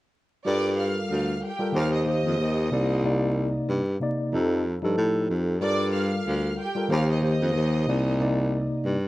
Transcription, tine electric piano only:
0.45 1.50 G3 medium
0.45 1.51 F4 medium
0.45 1.51 A4 medium
0.45 1.51 A#4 loud
1.59 1.74 G3 medium
1.59 1.74 F4 medium
1.59 1.75 A4 medium
1.59 1.75 A#4 loud
1.72 2.04 D#3 loud
1.72 2.04 A#3 medium
1.72 2.04 G4 medium
1.72 2.05 C5 loud
2.05 2.36 D#3 medium
2.05 2.37 A#3 medium
2.05 2.37 G4 medium
2.05 2.38 C5 medium
2.39 2.69 D#3 medium
2.39 2.70 A#3 medium
2.39 2.70 G4 medium
2.39 2.71 C5 medium
2.70 3.01 C3 medium
2.70 3.01 A#3 medium
2.70 3.02 D#4 medium
2.70 3.02 D5 medium
3.03 3.79 C3 loud
3.03 3.79 A#3 medium
3.03 3.80 D#4 medium
3.03 3.80 D5 loud
4.00 4.33 C3 loud
4.00 4.33 A#3 medium
4.00 4.32 D#4 medium
4.00 4.34 D5 loud
4.33 4.63 F3 medium
4.33 4.63 D#4 medium
4.33 4.64 G4 medium
4.33 4.64 A4 loud
4.82 5.56 F3 medium
4.82 5.56 D#4 medium
4.82 5.56 G4 medium
4.82 5.57 A4 loud
5.61 6.66 G3 medium
5.61 6.67 F4 medium
5.61 6.67 A4 medium
5.61 6.68 A#4 loud
6.75 6.90 G3 medium
6.75 6.90 F4 medium
6.75 6.91 A4 medium
6.75 6.91 A#4 loud
6.88 7.20 D#3 loud
6.88 7.20 A#3 medium
6.88 7.21 G4 loud
6.88 7.21 C5 loud
7.22 7.52 D#3 loud
7.22 7.53 A#3 medium
7.22 7.53 G4 medium
7.22 7.54 C5 loud
7.55 7.85 D#3 medium
7.55 7.86 A#3 medium
7.55 7.86 G4 medium
7.55 7.87 C5 medium
7.87 8.17 C3 medium
7.87 8.18 A#3 medium
7.87 8.18 D#4 medium
7.87 8.18 D5 medium
8.19 8.95 C3 medium
8.19 8.96 A#3 medium
8.19 8.96 D#4 medium
8.19 8.96 D5 loud

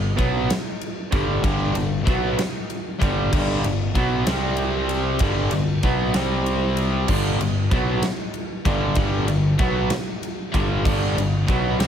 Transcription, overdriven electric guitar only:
0.00 0.11 G2 medium
0.00 0.12 D3 medium
0.16 0.47 B2 loud
0.16 0.48 F#3 loud
0.16 0.48 B3 loud
1.11 1.42 G2 loud
1.11 1.43 D3 loud
1.11 1.43 G3 loud
1.43 1.74 G2 loud
1.43 1.74 D3 loud
1.43 1.75 G3 loud
1.76 2.01 G2 medium
1.76 2.01 D3 medium
2.07 2.37 B2 loud
2.07 2.37 F#3 loud
2.07 2.38 B3 loud
3.01 3.31 G2 medium
3.01 3.31 D3 medium
3.01 3.31 G3 loud
3.32 3.63 G2 loud
3.32 3.62 D3 loud
3.32 3.63 G3 loud
3.65 3.89 G2 medium
3.65 3.90 D3 medium
3.96 4.26 B2 medium
3.96 4.26 F#3 loud
3.96 4.27 B3 loud
4.29 5.21 C3 medium
4.29 5.21 G3 loud
4.29 5.21 C4 loud
5.22 5.52 G2 loud
5.22 5.51 D3 loud
5.22 5.52 G3 loud
5.53 5.77 G2 medium
5.53 5.77 D3 medium
5.83 6.14 B2 medium
5.83 6.14 F#3 loud
5.83 6.14 B3 loud
6.15 7.08 C3 loud
6.15 7.08 G3 loud
6.15 7.08 C4 loud
7.08 7.39 G2 loud
7.08 7.39 D3 loud
7.08 7.39 G3 loud
7.40 7.65 G2 medium
7.40 7.65 D3 medium
7.71 8.01 B2 medium
7.71 8.02 F#3 loud
7.71 8.02 B3 loud
8.65 8.96 G2 medium
8.65 8.96 D3 loud
8.65 8.96 G3 loud
8.97 9.28 G2 loud
8.97 9.28 D3 loud
8.97 9.28 G3 loud
9.29 9.54 G2 medium
9.29 9.54 D3 medium
9.60 9.90 B2 loud
9.60 9.91 F#3 loud
9.60 9.90 B3 loud
10.54 10.83 G2 loud
10.54 10.83 D3 medium
10.54 10.83 G3 loud
10.84 11.15 G2 loud
10.84 11.15 D3 loud
10.84 11.15 G3 loud
11.17 11.42 G2 medium
11.17 11.42 D3 medium
11.49 11.79 B2 loud
11.49 11.80 F#3 loud
11.49 11.80 B3 loud
11.79 11.87 C3 loud
11.79 11.87 G3 loud
11.79 11.87 C4 loud

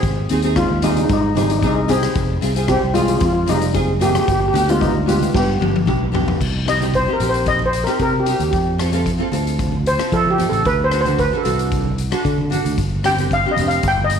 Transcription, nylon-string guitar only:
0.30 0.38 C4 medium
0.30 0.38 D#4 medium
0.30 0.39 G#4 medium
0.42 0.67 C4 medium
0.42 0.67 D#4 medium
0.42 0.68 G#4 medium
0.82 1.14 C4 medium
0.82 1.15 D#4 medium
0.82 1.15 G#4 medium
1.35 1.52 C4 medium
1.35 1.52 D#4 medium
1.35 1.53 G#4 medium
1.61 1.78 C4 medium
1.61 1.79 D#4 medium
1.61 1.79 G#4 medium
1.88 2.15 C4 medium
1.88 2.15 D#4 medium
1.88 2.16 G4 medium
2.41 2.50 C4 medium
2.41 2.50 F4 medium
2.41 2.51 G#4 medium
2.55 2.79 C4 medium
2.55 2.80 F4 medium
2.55 2.80 G#4 medium
2.94 3.26 C4 medium
2.94 3.27 F4 medium
2.94 3.27 G#4 medium
3.46 3.63 C4 medium
3.46 3.64 F4 medium
3.46 3.65 G#4 medium
3.73 3.90 C4 medium
3.73 3.90 F4 medium
3.73 3.91 G#4 medium
3.99 4.27 C4 medium
3.99 4.27 F4 medium
3.99 4.28 G#4 medium
4.53 4.62 B3 medium
4.53 4.62 D4 medium
4.53 4.62 G4 medium
4.66 4.91 B3 medium
4.66 4.91 D4 medium
4.66 4.92 G4 medium
5.06 5.39 B3 medium
5.06 5.39 D4 medium
5.06 5.40 G4 medium
5.59 5.76 B3 medium
5.59 5.77 D4 medium
5.59 5.77 G4 medium
5.86 6.03 B3 medium
5.86 6.03 D4 medium
5.86 6.03 G4 medium
6.12 6.39 B3 medium
6.12 6.40 D4 medium
6.12 6.40 G4 medium
6.65 6.74 C4 medium
6.65 6.75 D#4 medium
6.65 6.75 G4 medium
6.79 6.96 C4 medium
6.79 6.96 D#4 medium
6.79 6.96 G4 medium
7.07 7.14 C4 medium
7.07 7.15 D#4 medium
7.07 7.15 G4 medium
7.19 7.60 C4 medium
7.19 7.60 D#4 medium
7.19 7.61 G4 medium
7.86 8.10 C4 medium
7.86 8.11 D#4 medium
7.86 8.11 G4 medium
8.26 8.52 C4 medium
8.26 8.53 D#4 medium
8.26 8.53 G4 medium
8.78 8.87 C4 medium
8.78 8.87 F4 medium
8.78 8.88 A4 medium
8.92 9.08 C4 medium
8.92 9.08 F4 medium
8.92 9.09 A4 medium
9.18 9.27 C4 medium
9.18 9.27 F4 medium
9.18 9.28 A4 medium
9.31 9.72 C4 medium
9.31 9.72 F4 medium
9.31 9.73 A4 medium
9.98 10.22 C4 medium
9.98 10.23 F4 medium
9.98 10.23 A4 medium
10.38 10.65 C4 medium
10.38 10.65 F4 medium
10.38 10.66 A4 medium
10.91 11.00 D4 medium
10.91 11.00 F#4 medium
10.91 11.01 A4 medium
11.05 11.21 D4 medium
11.05 11.21 F#4 medium
11.05 11.22 A4 medium
11.31 11.39 D4 medium
11.31 11.40 F#4 medium
11.31 11.40 A4 medium
11.43 11.84 D4 medium
11.43 11.85 F#4 medium
11.43 11.85 A4 medium
12.11 12.35 D4 medium
12.11 12.35 F#4 medium
12.11 12.36 A4 loud
12.50 12.77 D4 medium
12.50 12.77 F#4 medium
12.50 12.78 A4 medium
13.03 13.12 C4 medium
13.03 13.12 D4 medium
13.03 13.13 G4 medium
13.17 13.33 C4 medium
13.17 13.34 D4 medium
13.17 13.34 G4 medium
13.45 13.52 C4 medium
13.45 13.53 D4 medium
13.45 13.53 G4 medium
13.58 13.84 C4 medium
13.58 13.84 D4 medium
13.58 13.85 G4 medium

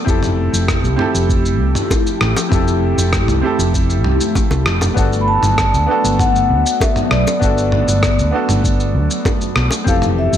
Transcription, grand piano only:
0.05 0.94 C4 medium
0.05 0.95 E4 medium
0.05 0.96 G4 medium
0.09 0.96 A4 medium
0.96 2.47 C4 medium
0.96 2.48 E4 medium
0.96 2.49 G4 medium
1.01 2.49 A4 medium
2.49 3.39 C4 medium
2.49 3.40 E4 medium
2.49 3.40 G4 medium
2.54 3.41 A4 medium
3.41 4.92 C4 medium
3.41 4.93 E4 medium
3.41 4.94 G4 medium
3.46 4.94 A4 medium
4.94 5.84 B3 medium
4.94 5.85 D4 medium
4.94 5.85 F#4 medium
4.99 5.86 A4 medium
5.86 7.37 B3 medium
5.86 7.38 D4 medium
5.86 7.38 F#4 medium
5.91 7.39 A4 medium
7.39 8.29 B3 medium
7.39 8.30 D4 medium
7.39 8.30 F#4 medium
7.44 8.31 A4 medium
8.31 9.82 B3 medium
8.31 9.83 D4 medium
8.31 9.83 F#4 medium
8.35 9.84 A4 medium
9.84 10.37 E3 medium
9.84 10.37 C4 medium
9.84 10.37 G4 medium
9.89 10.37 A4 medium

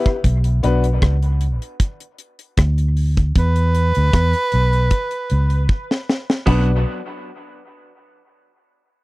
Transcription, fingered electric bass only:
0.25 0.60 B1 loud
0.64 0.99 B1 medium
1.03 1.58 C#2 medium
2.58 3.32 D2 medium
3.36 3.91 E2 loud
3.97 4.13 D2 medium
4.14 4.33 E2 medium
4.54 4.89 B1 medium
5.31 5.67 C#2 medium
6.48 6.84 B1 medium

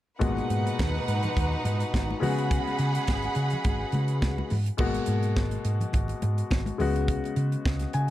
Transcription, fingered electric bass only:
0.21 0.40 G#1 medium
0.50 0.68 G#2 medium
0.79 0.97 D#2 medium
1.08 1.26 G#2 medium
1.37 1.55 D#2 medium
1.65 1.83 G#2 medium
1.94 2.12 G#1 medium
2.22 2.58 C#3 loud
2.79 2.97 C#3 medium
3.08 3.26 G#1 medium
3.36 3.54 C#3 loud
3.65 3.83 G#1 medium
3.93 4.24 C#3 loud
4.22 4.40 C#2 loud
4.51 4.69 G#2 medium
4.79 4.97 G#1 medium
5.08 5.38 G#2 medium
5.37 5.55 G#1 medium
5.65 5.83 G#2 medium
5.94 6.12 G#1 medium
6.23 6.41 G#2 medium
6.51 6.69 G#1 medium
6.79 7.16 C#2 medium
7.37 7.55 C#3 medium
7.66 7.84 C#2 medium
7.95 8.10 C#3 medium

